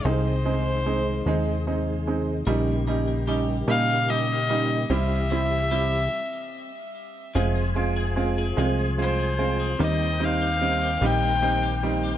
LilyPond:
<<
  \new Staff \with { instrumentName = "Violin" } { \time 6/8 \key f \minor \tempo 4. = 49 c''2 r4 | r4. f''8 ees''4 | e''2~ e''8 r8 | r2 c''4 |
ees''8 f''4 g''4 r8 | }
  \new Staff \with { instrumentName = "Tonewheel organ" } { \time 6/8 \key f \minor << { aes'2. | g'2.~ | g'4. r4. | aes''2. |
g''2. | } \\ { ees'2.~ | ees'2. | e'4. r4. | c''2.~ |
c''2. | } >> }
  \new Staff \with { instrumentName = "Tonewheel organ" } { \clef bass \time 6/8 \key f \minor <c ees aes>2. | <des g bes>2. | <c e>4. r4. | <f' aes'>2. |
<ees' bes'>2. | }
  \new Staff \with { instrumentName = "Clean electric guitar" } { \time 6/8 \key f \minor r2. | bes8 bes8 g'8 des'8 g'8 bes8 | g8 c'8 g'8 r4. | <f aes'>16 aes16 c'16 aes'16 c'16 aes'16 <f aes'>16 aes16 c'16 aes'16 c'16 aes'16 |
<ees g'>16 bes16 c'16 g'16 c'16 g'16 <ees g'>16 bes16 c'16 g'16 c'16 g'16 | }
  \new Staff \with { instrumentName = "Grand piano" } { \time 6/8 \key f \minor <aes c' ees'>8 <aes c' ees'>8 <aes c' ees'>8 <aes c' ees'>8 <aes c' ees'>8 <aes c' ees'>8 | <g des' ees'>8 <g des' ees'>8 <g des' ees'>8 <g des' ees'>8 <g des' ees'>8 <g des' ees'>8 | <g c' e'>8 <g c' e'>8 <g c' e'>8 r4. | <aes c' f'>8 <aes c' f'>8 <aes c' f'>8 <aes c' f'>8 <aes c' f'>8 <aes c' f'>8 |
<g c' ees'>8 <g c' ees'>8 <g c' ees'>8 <g c' ees'>8 <g c' ees'>8 <g c' ees'>8 | }
  \new Staff \with { instrumentName = "Analog synth bass" } { \clef bass \time 6/8 \key f \minor c,4. ees,4. | bes,,4. bes,4. | c,4. r4. | f,,4. c,4. |
ees,4. bes,,4. | }
>>